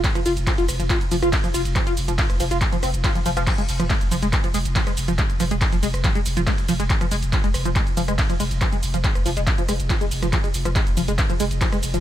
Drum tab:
CC |----------------|----------------|x---------------|----------------|
RD |x---x---x---x---|x---x---x---x---|x---x---x---x---|x---x---x---x---|
HH |xxoxxxoxxxoxxxox|xxoxxxoxxxoxxxox|xxoxxxoxxxoxxxox|xxoxxxoxxxoxxxox|
SH |xxxxxxxxxxxxxxxx|xxxxxxxxxxxxxxxx|xxxxxxxxxxxxxxxx|xxxxxxxxxxxxxxxx|
CP |x---x---x---x---|x---x---x---x---|x---x---x---x---|x---x---x---x---|
SD |-r----r----r----|r----r----r----r|---r----r----r--|--r----r----r---|
BD |o---o---o---o---|o---o---o---o---|o---o---o---o---|o---o---o---o---|

CC |----------------|----------------|----------------|
RD |x---x---x---x---|x---x---x---x---|x---x---x---x---|
HH |xxoxxxoxxxoxxxox|xxoxxxoxxxoxxxox|xxoxxxoxxxoxxxox|
SH |xxxxxxxxxxxxxxxx|xxxxxxxxxxxxxxxx|xxxxxxxxxxxxxxxx|
CP |x---x---x---x---|x---x---x---x---|x---x---x---x---|
SD |-r----r----r----|r----r----r----r|---r----r----r--|
BD |o---o---o---o---|o---o---o---o---|o---o---o---o---|